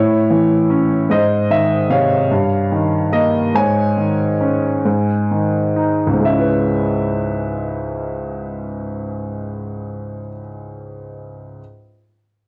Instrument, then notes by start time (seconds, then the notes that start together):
upright piano
Already playing: A2 E4 C#5
0.30 E3
0.70 C#4
1.10 G#2 C5 D#5
1.50 D#3 E5
1.89 C3 C#5 F5
2.31 G2
2.72 D#3
3.12 A#3 D#5
3.55 G#2 C#5 G#5
3.97 D#3
4.41 C#4
4.85 G#2
5.31 D#3
5.76 D#4
6.07 C#2
6.13 G#2
6.20 G#3
6.25 C#4 E5
6.33 E4
6.39 B4